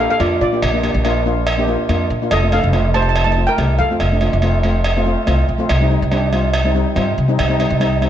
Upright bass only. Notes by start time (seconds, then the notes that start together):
0.20 F2
0.41 A#2
0.62 A#1
0.94 A#1
1.89 F2
2.10 A#2
2.32 F1
2.64 F1
3.58 C2
3.79 F2
4.01 F1
4.33 F1
5.28 C2
5.49 A#1
5.70 C2
6.02 C2
6.96 G2
7.18 C3
7.39 C2
7.70 C2